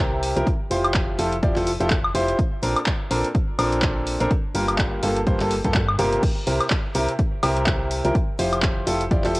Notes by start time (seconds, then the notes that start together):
Already playing: C2 C3 C4 E4 G4 A#4
0.23 open hi-hat
0.36 C2 F3 C4 E4 G4 A#4, closed hi-hat
0.47 kick, closed hi-hat
0.71 F1 F3 E4 F4 G4 C5, open hi-hat
0.84 closed hi-hat, high woodblock
0.94 kick, clap, closed hi-hat
1.19 F1 F3 E4 F4 G4 A4, open hi-hat
1.32 closed hi-hat
1.43 F1 F3 E4 F4 G4 D5, kick, closed hi-hat
1.56 F1 F3 E4 F4 G4 A4, clap, open hi-hat
1.67 open hi-hat
1.80 F1 F3 E4 F4 G4 A4, closed hi-hat
1.90 kick, clap, closed hi-hat
2.04 high woodblock
2.15 F1 E4 F4 G4 C5, open hi-hat
2.28 closed hi-hat
2.39 kick, closed hi-hat
2.63 A#1 A#2 C4 D4 A4 A#4, open hi-hat
2.76 closed hi-hat, high woodblock
2.86 kick, clap, closed hi-hat
3.11 A#1 A#2 C4 D4 A4 A#4, open hi-hat
3.24 closed hi-hat
3.35 kick, closed hi-hat
3.59 A#1 A#2 C4 D4 A4 A#4, open hi-hat, high woodblock
3.73 closed hi-hat
3.82 kick, clap, closed hi-hat
4.07 open hi-hat
4.20 A#1 C4 D4 A4 A#4, closed hi-hat
4.31 kick, closed hi-hat
4.55 G1 G2 A#3 F4 G4 A#4, open hi-hat
4.68 closed hi-hat, high woodblock
4.78 kick, clap, closed hi-hat
5.03 G1 G2 A#3 F4 G4 A4, open hi-hat
5.17 closed hi-hat
5.27 G1 G2 A#3 F4 G4 C5, kick, closed hi-hat
5.40 G1 G2 A#3 F4 G4 A4, clap, open hi-hat
5.51 open hi-hat
5.64 G2 A#3 F4 G4 A4, kick, closed hi-hat
5.74 kick, clap, closed hi-hat
5.88 high woodblock
5.99 G1 C3 A#3 F4 G4 A#4, open hi-hat
6.12 closed hi-hat
6.23 kick, closed hi-hat, crash
6.47 C2 C3 C4 E4 G4 A#4, open hi-hat
6.61 closed hi-hat, high woodblock
6.70 kick, clap, closed hi-hat
6.95 C2 C3 C4 E4 G4 A#4, open hi-hat
7.09 closed hi-hat
7.19 kick, closed hi-hat
7.43 C2 C3 C4 E4 G4 A#4, open hi-hat, high woodblock
7.57 closed hi-hat
7.66 kick, clap, closed hi-hat
7.91 open hi-hat
8.05 C2 F3 C4 E4 G4 A#4, closed hi-hat
8.15 kick, closed hi-hat
8.39 F1 F3 E4 F4 G4 C5, open hi-hat
8.53 closed hi-hat, high woodblock
8.62 kick, clap, closed hi-hat
8.87 F1 F3 E4 F4 G4 A4, open hi-hat
9.01 closed hi-hat
9.11 F1 F3 E4 F4 G4 D5, kick, closed hi-hat
9.24 F1 F3 E4 F4 G4 A4, clap, open hi-hat
9.35 open hi-hat